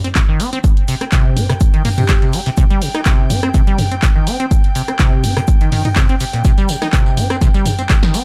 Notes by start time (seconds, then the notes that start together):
0.04 C4, closed hi-hat
0.15 C3, kick, snare, clap, closed hi-hat, shaker
0.28 D#3
0.40 C4, open hi-hat, shaker
0.47 G5
0.53 C4, closed hi-hat
0.64 kick, closed hi-hat, shaker
0.77 closed hi-hat
0.88 C3, open hi-hat, shaker
1.01 C4, cross-stick, closed hi-hat
1.12 C3, kick, snare, clap, closed hi-hat, shaker
1.36 C4, mid tom, open hi-hat, shaker
1.49 C3, cross-stick, closed hi-hat
1.60 kick, closed hi-hat, shaker
1.74 D#3, closed hi-hat
1.84 A#3, mid tom, open hi-hat
1.98 C3 G4, closed hi-hat, mid tom
2.09 C3 G4, kick, snare, clap, closed hi-hat, shaker
2.22 C3, closed hi-hat
2.33 G3, open hi-hat, shaker
2.46 C3, snare, closed hi-hat
2.57 C3, kick, closed hi-hat, shaker
2.70 G3, closed hi-hat
2.82 C3, open hi-hat, shaker
2.94 D#4, cross-stick, snare, closed hi-hat
3.05 C3, kick, snare, clap, closed hi-hat, shaker
3.30 C4, mid tom, open hi-hat, shaker
3.43 C4, cross-stick, closed hi-hat
3.54 C3, kick, closed hi-hat, shaker
3.67 G3, closed hi-hat
3.78 C3, mid tom, open hi-hat, shaker
3.91 C4, closed hi-hat
4.02 C3, kick, snare, clap, closed hi-hat, shaker
4.16 D#3
4.27 C4, open hi-hat, shaker
4.40 C4, closed hi-hat
4.51 kick, closed hi-hat, shaker
4.64 closed hi-hat
4.75 C3, open hi-hat, shaker
4.88 C4, cross-stick, closed hi-hat
4.99 C3, kick, snare, clap, closed hi-hat, shaker
5.24 C4, mid tom, open hi-hat, shaker
5.37 C3, cross-stick, closed hi-hat
5.47 kick, closed hi-hat, shaker
5.61 D#3, closed hi-hat
5.72 D#3, mid tom, open hi-hat
5.85 D#4, closed hi-hat, mid tom
5.96 C3, kick, snare, clap, closed hi-hat, shaker
6.09 C4, closed hi-hat
6.20 C3, open hi-hat, shaker
6.33 A#2, snare, closed hi-hat
6.44 C3, kick, closed hi-hat, tambourine, shaker
6.58 G3, closed hi-hat, tambourine
6.68 C3, open hi-hat, tambourine, shaker
6.82 D#4, cross-stick, snare, closed hi-hat, tambourine
6.93 C3, kick, snare, clap, closed hi-hat, tambourine, shaker
7.06 tambourine
7.17 C4, mid tom, open hi-hat, tambourine, shaker
7.30 C4, cross-stick, closed hi-hat, tambourine
7.41 C3, kick, snare, closed hi-hat, tambourine, shaker
7.54 G3, closed hi-hat, tambourine
7.66 C3, mid tom, open hi-hat, tambourine, shaker
7.79 C4, closed hi-hat, tambourine
7.89 C3, kick, snare, clap, closed hi-hat, tambourine, shaker
8.03 D#3, snare, tambourine
8.14 C4, open hi-hat, tambourine, shaker